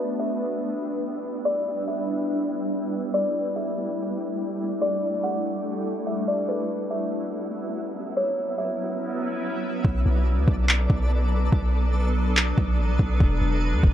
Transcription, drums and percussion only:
9.85 kick
10.48 kick
10.69 clap
10.90 kick
11.52 kick
12.37 clap
12.58 kick
12.99 kick
13.20 kick
13.83 kick

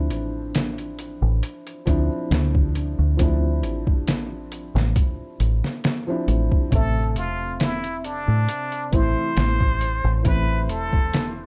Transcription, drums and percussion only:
0.10 closed hi-hat
0.55 snare, closed hi-hat
0.78 closed hi-hat
0.99 closed hi-hat
1.43 closed hi-hat
1.67 closed hi-hat
1.87 kick, closed hi-hat
2.31 snare, closed hi-hat
2.55 kick
2.75 closed hi-hat
3.19 kick, closed hi-hat
3.63 closed hi-hat
3.87 kick
4.07 snare, closed hi-hat
4.52 closed hi-hat
4.76 snare
4.96 kick, closed hi-hat
5.40 closed hi-hat
5.64 snare
5.84 snare, closed hi-hat
6.28 closed hi-hat
6.52 kick
6.72 kick, closed hi-hat
7.16 closed hi-hat
7.60 snare, closed hi-hat
7.84 closed hi-hat
8.04 closed hi-hat
8.49 closed hi-hat
8.72 closed hi-hat
8.93 kick, closed hi-hat
9.37 snare, closed hi-hat
9.60 kick
9.81 closed hi-hat
10.25 kick, closed hi-hat
10.69 closed hi-hat
10.93 kick
11.13 snare, closed hi-hat

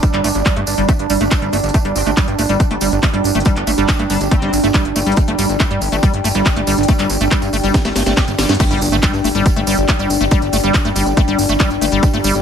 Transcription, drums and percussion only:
0.03 kick, closed hi-hat, tambourine
0.14 clap, closed hi-hat
0.24 open hi-hat, tambourine
0.35 closed hi-hat, tambourine
0.46 kick, clap, closed hi-hat, tambourine
0.56 closed hi-hat
0.67 open hi-hat, tambourine
0.77 closed hi-hat, tambourine
0.89 kick, closed hi-hat, tambourine
0.99 closed hi-hat
1.10 open hi-hat, tambourine
1.21 closed hi-hat, tambourine
1.31 kick, clap, closed hi-hat, tambourine
1.42 closed hi-hat
1.53 open hi-hat, tambourine
1.64 closed hi-hat, tambourine
1.69 closed hi-hat
1.74 kick, closed hi-hat, tambourine
1.85 closed hi-hat
1.96 open hi-hat, tambourine
2.06 closed hi-hat, tambourine
2.17 kick, clap, closed hi-hat, tambourine
2.28 closed hi-hat
2.39 open hi-hat, tambourine
2.49 closed hi-hat, tambourine
2.60 kick, closed hi-hat, tambourine
2.71 closed hi-hat
2.81 open hi-hat, tambourine
2.92 closed hi-hat, tambourine
3.03 kick, clap, closed hi-hat, tambourine
3.14 closed hi-hat
3.24 open hi-hat, tambourine
3.35 closed hi-hat, tambourine
3.40 closed hi-hat
3.45 kick, closed hi-hat, tambourine
3.56 clap, closed hi-hat
3.67 open hi-hat, tambourine
3.78 closed hi-hat, tambourine
3.89 kick, clap, closed hi-hat, tambourine
3.99 closed hi-hat
4.10 open hi-hat, tambourine
4.21 closed hi-hat, tambourine
4.31 kick, closed hi-hat, tambourine
4.42 closed hi-hat
4.53 open hi-hat, tambourine
4.64 closed hi-hat, tambourine
4.74 kick, clap, closed hi-hat, tambourine
4.85 closed hi-hat
4.96 open hi-hat, tambourine
5.06 closed hi-hat, tambourine
5.12 closed hi-hat
5.16 kick, closed hi-hat, tambourine
5.28 closed hi-hat
5.39 open hi-hat, tambourine
5.49 closed hi-hat, tambourine
5.60 kick, clap, closed hi-hat, tambourine
5.71 closed hi-hat
5.81 open hi-hat, tambourine
5.92 closed hi-hat, tambourine
6.03 kick, closed hi-hat, tambourine
6.14 closed hi-hat
6.24 open hi-hat, tambourine
6.35 closed hi-hat, tambourine
6.46 kick, clap, closed hi-hat, tambourine
6.56 closed hi-hat
6.67 open hi-hat, tambourine
6.78 closed hi-hat, tambourine
6.83 closed hi-hat
6.88 kick, closed hi-hat, tambourine
6.99 clap, closed hi-hat, tambourine
7.09 open hi-hat, tambourine
7.21 closed hi-hat, tambourine
7.31 kick, clap, closed hi-hat, tambourine
7.42 closed hi-hat, tambourine
7.53 open hi-hat, tambourine
7.64 closed hi-hat, tambourine
7.74 kick, snare, closed hi-hat, tambourine
7.85 snare, closed hi-hat
7.96 snare, open hi-hat, tambourine
8.06 snare, closed hi-hat, tambourine
8.17 kick, snare, clap, closed hi-hat, tambourine
8.28 closed hi-hat, tambourine
8.39 snare, open hi-hat, tambourine
8.48 snare, closed hi-hat, tambourine
8.55 closed hi-hat
8.60 kick, closed hi-hat, tambourine, crash
8.71 closed hi-hat, tambourine
8.81 open hi-hat, tambourine
8.92 closed hi-hat, tambourine
9.02 kick, clap, closed hi-hat, tambourine
9.14 closed hi-hat, tambourine
9.24 open hi-hat, tambourine
9.35 closed hi-hat, tambourine
9.46 kick, closed hi-hat, tambourine
9.56 closed hi-hat, tambourine
9.67 open hi-hat, tambourine
9.78 closed hi-hat, tambourine
9.89 kick, clap, closed hi-hat, tambourine
9.99 closed hi-hat, tambourine
10.10 open hi-hat, tambourine
10.20 closed hi-hat, tambourine
10.31 kick, closed hi-hat, tambourine
10.42 closed hi-hat, tambourine
10.53 open hi-hat, tambourine
10.64 closed hi-hat, tambourine
10.74 kick, clap, closed hi-hat, tambourine
10.85 closed hi-hat, tambourine
10.96 open hi-hat, tambourine
11.06 closed hi-hat, tambourine
11.17 kick, closed hi-hat, tambourine
11.28 closed hi-hat, tambourine
11.39 open hi-hat, tambourine
11.49 closed hi-hat, tambourine
11.60 kick, clap, closed hi-hat, tambourine
11.70 closed hi-hat, tambourine
11.81 open hi-hat, tambourine
11.91 closed hi-hat, tambourine
12.03 kick, closed hi-hat, tambourine
12.14 closed hi-hat, tambourine
12.24 open hi-hat, tambourine
12.35 closed hi-hat, tambourine

